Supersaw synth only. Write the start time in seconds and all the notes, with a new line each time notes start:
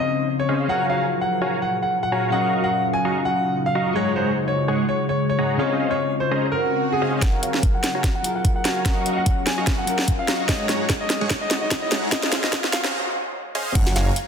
0.49 C#4 G#4 C5 D#5 F5
0.69 F#4 C#5 F5 G#5 A#5
0.89 F#4 C#5 F5 G#5 A#5
1.41 F#4 C#5 F5 G#5 A#5
2.12 F#4 C#5 F5 G#5 A#5
2.32 F#4 D#5 F5 A#5 C#6
2.53 F#4 D#5 F5 A#5 C#6
3.05 F#4 D#5 F5 A#5 C#6
3.75 F#4 D#5 F5 A#5 C#6
3.96 G#3 G#4 C#5 F#5 A#5
4.16 G#3 G#4 C#5 F#5 A#5
4.68 G#3 G#4 C#5 F#5 C#6
5.39 G#3 G#4 C#5 F#5 A#5
5.59 C#4 G#4 C5 D#5 F5
5.79 C#4 G#4 C5 D#5 F5
6.31 C#4 G#4 C5 D#5 A#5
7.02 C#4 G#4 C5 D#5 F5
7.22 F#4 C#5 F5 G#5 A#5
7.43 F#4 C#5 F5 G#5 A#5
7.95 F#4 C#5 F5 G#5 A#5
8.65 F#4 C#5 F5 G#5 A#5
8.85 F#4 D#5 F5 A#5 C#6
9.06 F#4 D#5 F5 A#5 C#6
9.58 F#4 D#5 F5 A#5 C#6
10.28 F#4 D#5 F5 A#5 C#6
10.49 G#3 G#4 C#5 F#5 A#5
10.69 G#3 G#4 C#5 F#5 A#5
11.21 G#3 G#4 C#5 F#5 C#6
11.92 G#3 G#4 C#5 F#5 A#5
12.12 C#4 G#4 C5 D#5 F5
12.32 C#4 G#4 C5 D#5 F5
12.84 C#4 G#4 C5 D#5 A#5
13.55 C#4 G#4 C5 D#5 F5
13.75 F#4 C#5 F5 G#5 A#5
13.96 F#4 C#5 F5 G#5 A#5